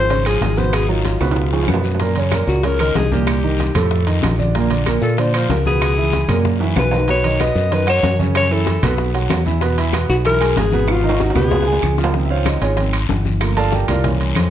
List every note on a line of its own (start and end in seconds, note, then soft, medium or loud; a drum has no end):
0.00 0.38 G#1 loud
0.00 0.28 C5 loud
0.09 0.23 C#3 medium
0.09 0.23 C#4 medium
0.09 0.23 C#5 medium
0.09 high bongo medium
0.09 high conga soft
0.09 high timbale medium
0.09 long guiro medium
0.25 0.51 F3 medium
0.25 0.52 F4 medium
0.25 0.52 G#4 medium
0.25 0.42 G#4 loud
0.25 high conga soft
0.25 high timbale medium
0.25 claves medium
0.41 1.15 G#1 medium
0.41 0.60 G#4 medium
0.41 high bongo soft
0.41 low bongo medium
0.41 high conga medium
0.41 high timbale medium
0.41 low timbale medium
0.41 short guiro medium
0.57 0.83 B2 medium
0.57 0.83 B3 medium
0.57 0.83 B4 medium
0.57 0.76 C5 loud
0.57 high bongo soft
0.57 high conga medium
0.57 short guiro medium
0.73 0.90 G#4 loud
0.73 high bongo medium
0.73 high conga soft
0.73 high timbale medium
0.73 long guiro medium
0.73 claves medium
0.88 1.15 D#3 medium
0.88 1.15 F#3 medium
0.88 1.15 D#4 medium
0.88 1.34 F4 medium
0.88 high bongo soft
0.88 high conga soft
1.05 high bongo medium
1.05 high conga medium
1.05 high timbale medium
1.05 low timbale medium
1.05 short guiro medium
1.21 1.65 C#2 medium
1.21 1.47 B2 medium
1.21 1.47 B3 medium
1.21 1.47 B4 medium
1.21 high bongo soft
1.21 high conga soft
1.21 high timbale medium
1.21 short guiro medium
1.21 claves medium
1.31 high timbale medium
1.36 1.82 F4 medium
1.36 high bongo medium
1.36 high conga soft
1.36 long guiro medium
1.52 1.66 F3 medium
1.52 1.66 F4 medium
1.52 1.66 G#4 medium
1.52 high conga soft
1.52 high timbale medium
1.63 low timbale medium
1.68 2.42 F#2 medium
1.68 1.95 B2 medium
1.68 1.95 B3 medium
1.68 1.95 B4 medium
1.68 high bongo soft
1.68 low bongo medium
1.68 high conga medium
1.68 short guiro medium
1.68 claves medium
1.74 low timbale loud
1.84 high bongo soft
1.84 short guiro medium
1.95 low timbale medium
2.00 2.14 A#2 medium
2.00 2.14 A#3 medium
2.00 2.14 A#4 medium
2.00 high bongo medium
2.00 high conga soft
2.00 high timbale medium
2.00 long guiro medium
2.16 2.30 C#3 medium
2.16 2.30 C#4 medium
2.16 2.30 C#5 medium
2.16 high bongo soft
2.16 high conga soft
2.16 high timbale medium
2.32 2.58 A#2 medium
2.32 2.58 A#3 medium
2.32 2.59 A#4 medium
2.32 high bongo medium
2.32 high conga medium
2.32 high timbale medium
2.32 low timbale medium
2.32 short guiro medium
2.32 claves medium
2.47 2.92 C#2 medium
2.47 2.66 F#4 loud
2.47 high bongo soft
2.47 short guiro medium
2.63 2.77 C#3 medium
2.63 2.77 C#4 medium
2.63 2.80 A#4 loud
2.63 2.77 C#5 medium
2.63 high bongo medium
2.63 high conga soft
2.63 high timbale medium
2.63 long guiro medium
2.79 3.06 D#3 medium
2.79 3.06 D#4 medium
2.79 2.98 A#4 loud
2.79 3.06 D#5 medium
2.79 high conga soft
2.79 high timbale medium
2.79 claves medium
2.95 3.69 C2 medium
2.95 3.14 G#4 medium
2.95 high bongo soft
2.95 low bongo medium
2.95 high conga medium
2.95 high timbale medium
2.95 low timbale medium
2.95 short guiro medium
3.12 3.38 A#2 medium
3.12 3.38 A#3 medium
3.12 4.07 G4 medium
3.12 3.38 A#4 medium
3.12 high bongo soft
3.12 high conga medium
3.12 short guiro medium
3.27 high bongo medium
3.27 high conga soft
3.27 high timbale medium
3.27 long guiro medium
3.27 claves medium
3.43 3.70 D#3 medium
3.43 3.70 D#4 medium
3.43 3.70 D#5 medium
3.43 high bongo soft
3.43 high conga soft
3.59 high bongo medium
3.59 high conga medium
3.59 high timbale medium
3.59 low timbale medium
3.59 short guiro medium
3.75 4.19 F2 medium
3.75 4.02 A2 medium
3.75 4.02 A3 medium
3.75 4.02 A4 medium
3.75 high bongo soft
3.75 high conga soft
3.75 low conga medium
3.75 high timbale medium
3.75 short guiro medium
3.75 claves medium
3.91 high bongo medium
3.91 high conga soft
3.91 long guiro medium
4.07 4.33 D#3 medium
4.07 4.33 D#4 medium
4.07 4.33 D#5 medium
4.07 high conga soft
4.07 high timbale medium
4.22 4.97 A#1 medium
4.22 high bongo soft
4.22 low bongo medium
4.22 high conga medium
4.22 high timbale medium
4.22 low timbale medium
4.22 short guiro medium
4.22 claves medium
4.39 4.52 D3 medium
4.39 4.52 D4 medium
4.39 4.52 D5 medium
4.39 high bongo soft
4.39 high conga medium
4.39 short guiro medium
4.55 4.68 A#2 medium
4.55 4.68 A#3 medium
4.55 4.68 A#4 medium
4.55 high bongo medium
4.55 high timbale medium
4.55 long guiro medium
4.70 4.83 D3 medium
4.70 4.84 D4 medium
4.70 4.84 D5 medium
4.70 high bongo soft
4.70 high conga soft
4.70 high timbale medium
4.86 5.12 A#2 medium
4.86 5.13 A#3 medium
4.86 5.13 A#4 medium
4.86 high bongo medium
4.86 high conga medium
4.86 high timbale medium
4.86 low timbale medium
4.86 short guiro medium
4.86 claves medium
5.02 5.46 A#2 medium
5.02 5.20 A4 medium
5.02 high bongo soft
5.02 short guiro medium
5.17 5.31 D3 medium
5.17 5.31 D4 medium
5.17 5.34 C5 medium
5.17 5.32 D5 medium
5.17 high bongo medium
5.17 high conga soft
5.17 high timbale medium
5.17 long guiro medium
5.34 5.60 F3 medium
5.34 5.60 F4 medium
5.34 5.49 C5 medium
5.34 5.61 F5 medium
5.34 high conga soft
5.34 high timbale loud
5.34 claves medium
5.49 6.23 C#2 medium
5.49 5.65 A#4 medium
5.49 high bongo soft
5.49 low bongo medium
5.49 high conga medium
5.49 high timbale medium
5.49 low timbale medium
5.49 short guiro medium
5.65 5.92 B2 medium
5.65 5.92 B3 medium
5.65 6.57 G#4 medium
5.65 5.92 B4 medium
5.65 high bongo soft
5.65 high conga medium
5.65 short guiro medium
5.81 high bongo medium
5.81 high conga soft
5.81 high timbale medium
5.81 long guiro medium
5.81 claves medium
5.97 6.23 E3 medium
5.97 6.23 E4 medium
5.97 6.24 E5 medium
5.97 high bongo soft
5.97 high conga soft
6.13 high bongo medium
6.13 high conga medium
6.13 high timbale medium
6.13 low timbale medium
6.13 short guiro medium
6.28 6.73 F#2 medium
6.28 6.55 A#2 medium
6.28 6.55 A#3 medium
6.28 6.55 A#4 medium
6.28 high bongo soft
6.28 high conga soft
6.28 low conga medium
6.28 high timbale medium
6.28 short guiro medium
6.28 claves medium
6.45 high bongo medium
6.45 high conga soft
6.45 low conga medium
6.45 long guiro medium
6.60 6.87 E3 medium
6.60 6.87 E4 medium
6.60 6.87 E5 medium
6.60 high conga soft
6.60 high timbale medium
6.76 7.50 B1 medium
6.76 7.07 B4 medium
6.76 high bongo soft
6.76 low bongo medium
6.76 high conga medium
6.76 low timbale medium
6.76 short guiro medium
6.76 claves medium
6.91 7.05 D#3 medium
6.91 7.05 D#4 medium
6.91 7.06 D#5 medium
6.91 high bongo soft
6.91 low timbale loud
6.91 short guiro medium
7.08 7.21 B2 medium
7.08 7.21 B3 medium
7.08 7.21 B4 medium
7.08 7.43 C#5 medium
7.08 high bongo medium
7.08 high conga soft
7.08 high timbale medium
7.08 long guiro medium
7.24 7.37 D#3 medium
7.24 7.37 D#4 medium
7.24 7.38 D#5 medium
7.24 high bongo soft
7.24 high conga soft
7.24 high timbale medium
7.39 7.65 B2 medium
7.39 7.66 B3 medium
7.39 7.66 B4 medium
7.39 7.75 D#5 loud
7.39 high bongo medium
7.39 high conga medium
7.39 high timbale medium
7.39 low timbale medium
7.39 short guiro medium
7.39 claves medium
7.55 8.00 F#2 medium
7.55 high bongo soft
7.55 short guiro medium
7.71 7.84 D#3 medium
7.71 7.85 D#4 medium
7.71 7.88 B4 medium
7.71 7.85 D#5 medium
7.71 high bongo medium
7.71 high conga soft
7.71 high timbale medium
7.71 long guiro medium
7.87 8.13 F#3 medium
7.87 8.13 F#4 medium
7.87 8.18 C#5 loud
7.87 8.13 F#5 medium
7.87 high conga soft
7.87 high timbale medium
7.87 claves medium
8.03 8.77 F#2 medium
8.03 high bongo soft
8.03 low bongo medium
8.03 high conga medium
8.03 high timbale medium
8.03 low timbale medium
8.03 short guiro medium
8.19 8.45 C#3 medium
8.19 8.45 C#4 medium
8.19 8.46 C#5 medium
8.19 high bongo soft
8.19 high conga medium
8.19 short guiro medium
8.35 8.54 C#5 loud
8.35 high bongo medium
8.35 high conga soft
8.35 high timbale medium
8.35 long guiro medium
8.35 claves medium
8.51 8.77 E3 medium
8.51 8.77 E4 medium
8.51 8.99 A4 medium
8.51 8.77 E5 medium
8.51 high bongo soft
8.51 high conga soft
8.66 high bongo medium
8.66 high conga medium
8.66 high timbale medium
8.66 low timbale medium
8.66 short guiro medium
8.83 9.27 B1 loud
8.83 9.09 B2 medium
8.83 9.09 B3 medium
8.83 9.09 B4 medium
8.83 high bongo soft
8.83 high conga soft
8.83 low conga medium
8.83 high timbale loud
8.83 short guiro medium
8.83 claves medium
8.98 high bongo medium
8.98 high conga soft
8.98 long guiro medium
9.14 9.40 F#3 medium
9.14 9.40 F#4 medium
9.14 9.40 F#5 medium
9.14 high conga soft
9.14 high timbale medium
9.30 10.04 E2 medium
9.30 high bongo soft
9.30 low bongo medium
9.30 high conga medium
9.30 high timbale medium
9.30 low timbale medium
9.30 short guiro medium
9.30 claves medium
9.46 9.59 E3 medium
9.46 9.59 E4 medium
9.46 9.59 E5 medium
9.46 high bongo soft
9.46 high conga medium
9.46 short guiro medium
9.61 9.74 B2 medium
9.61 9.75 B3 medium
9.61 9.75 B4 medium
9.61 high bongo medium
9.61 high timbale medium
9.61 long guiro medium
9.78 9.91 E3 medium
9.78 9.91 E4 medium
9.78 9.91 E5 medium
9.78 high bongo soft
9.78 high conga soft
9.78 high timbale medium
9.93 10.19 B2 medium
9.93 10.19 B3 medium
9.93 10.19 B4 medium
9.93 high bongo medium
9.93 high conga medium
9.93 high timbale medium
9.93 low timbale medium
9.93 short guiro medium
9.93 claves medium
10.09 10.53 B1 loud
10.09 10.17 F#4 loud
10.09 high bongo soft
10.09 short guiro medium
10.24 10.38 E3 medium
10.24 10.38 E4 medium
10.24 10.60 A#4 loud
10.24 10.38 E5 medium
10.24 high bongo medium
10.24 high conga soft
10.24 high timbale medium
10.24 long guiro medium
10.41 10.67 G#3 medium
10.41 10.67 G#4 medium
10.41 10.67 G#5 medium
10.41 high conga soft
10.41 high timbale medium
10.41 claves medium
10.56 11.30 G#1 medium
10.56 10.89 G#4 loud
10.56 high bongo soft
10.56 low bongo medium
10.56 high conga medium
10.56 high timbale medium
10.56 low timbale medium
10.56 short guiro medium
10.72 10.99 B2 medium
10.72 10.99 B3 medium
10.72 10.99 B4 medium
10.72 high bongo soft
10.72 high conga medium
10.72 short guiro medium
10.88 11.23 F4 loud
10.88 high bongo medium
10.88 high conga soft
10.88 high timbale medium
10.88 long guiro medium
10.88 claves medium
11.03 11.30 D#3 medium
11.03 11.30 D#4 medium
11.03 11.30 D#5 medium
11.03 high bongo soft
11.03 high conga soft
11.09 high timbale loud
11.19 11.36 F#4 medium
11.19 high bongo medium
11.19 high conga medium
11.19 high timbale medium
11.19 short guiro medium
11.30 high timbale medium
11.35 11.79 C#2 loud
11.35 11.61 B2 medium
11.35 11.62 B3 medium
11.35 11.96 G#4 loud
11.35 11.62 B4 medium
11.35 high bongo medium
11.35 high conga soft
11.35 low conga medium
11.35 short guiro medium
11.35 claves medium
11.51 high bongo medium
11.51 high conga soft
11.51 low conga medium
11.51 low timbale medium
11.51 long guiro medium
11.62 11.93 G#3 medium
11.62 low timbale medium
11.66 11.93 G#4 medium
11.66 11.93 G#5 medium
11.66 high conga soft
11.73 low timbale medium
11.83 12.56 C#2 medium
11.83 high conga medium
11.83 short guiro medium
11.83 claves medium
11.98 12.12 F3 medium
11.98 12.12 F4 medium
11.98 12.12 F5 medium
11.98 low bongo medium
11.98 short guiro medium
12.04 low timbale loud
12.14 12.59 D#3 medium
12.14 12.60 F3 soft
12.14 12.60 C4 medium
12.14 high bongo medium
12.14 high conga soft
12.14 long guiro medium
12.26 12.28 E5 medium
12.30 12.46 F4 medium
12.30 12.46 C5 medium
12.30 12.46 C#5 medium
12.30 12.46 F5 medium
12.30 high bongo soft
12.30 high conga soft
12.46 12.62 D#4 medium
12.46 12.61 D#5 medium
12.46 high bongo medium
12.46 high conga medium
12.46 high timbale medium
12.46 short guiro medium
12.46 claves medium
12.61 13.06 G#1 medium
12.61 12.78 C#4 medium
12.61 12.78 F4 medium
12.61 12.78 G#4 medium
12.61 12.77 C#5 medium
12.61 high bongo soft
12.61 high conga soft
12.61 high timbale medium
12.61 short guiro medium
12.77 12.92 D#3 medium
12.77 12.92 F3 soft
12.77 12.92 C4 medium
12.77 high bongo medium
12.77 high conga soft
12.77 high timbale medium
12.77 long guiro medium
12.93 high conga soft
12.93 high timbale medium
12.93 claves medium
13.09 13.83 G1 medium
13.09 high bongo soft
13.09 low bongo medium
13.09 high conga medium
13.09 short guiro medium
13.25 high bongo soft
13.25 high conga medium
13.25 short guiro medium
13.40 13.86 F3 medium
13.40 13.86 A3 medium
13.40 13.86 A#3 medium
13.40 high bongo medium
13.40 high conga soft
13.40 high timbale medium
13.40 long guiro medium
13.40 claves medium
13.56 13.72 A4 medium
13.56 13.71 D5 medium
13.56 13.72 F5 medium
13.56 13.72 A5 loud
13.56 high bongo soft
13.56 high conga soft
13.56 high timbale medium
13.72 13.88 G4 medium
13.72 13.87 A#4 medium
13.72 13.87 D5 medium
13.72 13.88 G5 medium
13.72 high bongo medium
13.72 high conga medium
13.72 short guiro medium
13.88 14.33 C2 loud
13.88 14.04 F4 medium
13.88 14.04 A#4 medium
13.88 14.04 D5 medium
13.88 14.04 F5 medium
13.88 high bongo soft
13.88 high conga soft
13.88 low conga medium
13.88 high timbale medium
13.88 short guiro medium
13.88 claves medium
14.04 14.49 E3 medium
14.04 14.49 A#3 medium
14.04 14.49 C#4 medium
14.04 high bongo medium
14.04 high conga soft
14.04 low conga medium
14.04 high timbale medium
14.04 long guiro medium
14.21 high timbale medium
14.35 14.50 F2 medium
14.35 high bongo soft
14.35 low bongo medium
14.35 high conga medium
14.35 high timbale loud
14.35 short guiro medium
14.35 claves medium